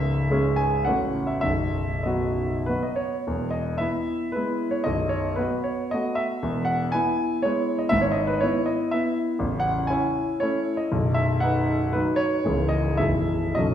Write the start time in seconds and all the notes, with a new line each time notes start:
Already playing: C#1 C#2 E5
0.31 G#3 C#4 G#4
0.56 G#5
0.85 A0 A1 A3 C#4 F#5
0.89 F#4
1.27 E5
1.41 B0 B1 E5
2.03 F#3 B3 F#4 D#5
2.66 F#3 B3 F#4 B4
2.83 D#5
2.96 C#5
3.27 E1 E2
3.51 D#5
3.78 B3 E4 E5
4.32 G#3 B3 E4 B4
4.71 C#5
4.84 B0 B1 D#5
5.09 C#5
5.36 B3 F#4 B4
5.64 C#5
5.91 A3 B3 F#4 D#5
6.15 E5
6.43 E1 E2
6.65 F#5
6.92 B3 E4 G#5
7.42 G#3 B3 E4 C#5
7.79 D#5
7.89 G#1 G#2 E5
8.01 C#5
8.12 D#5
8.27 B4
8.40 B3 E4 C#5
8.66 D#5
8.91 B3 E4 E5
9.39 A0 A1
9.60 F#5
9.87 C#4 E4 G#5
10.40 A3 C#4 E4 C#5
10.77 D#5
10.92 B0 B1
11.14 E5
11.40 D#4 B4 F#5
11.93 F#3 D#4 B4
12.16 C#5
12.45 C#1 C#2 E3 E4 G#4
12.69 D#5
12.97 B0 B1 E3 E4 G#4 E5
13.55 B0 B1 F#3 C#4 A4 D#5